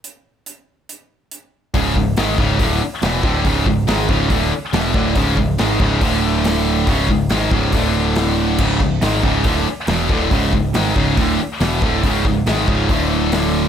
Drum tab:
CC |----------------|----------------|----------------|----------------|
HH |x---x---x---x---|o---o---o---o---|o---o---o---o---|o---o---o---o---|
SD |----------------|--o-o----o--o---|----o----o--o---|----o----o--o---|
BD |----------------|o-o---o-o-----o-|o-o---o-o-----o-|o-o---o-o-------|

CC |----------------|x---------------|----------------|----------------|
HH |o---o---o---o---|----o---o---o---|o---o---o---o---|o---o---o---o---|
SD |----o-------o---|--o-o----o--o---|----o-------o---|--o-o-------o---|
BD |o-o---o-o-------|o-o---o-o-----o-|o-o---o-o-----o-|o-o---o-o-------|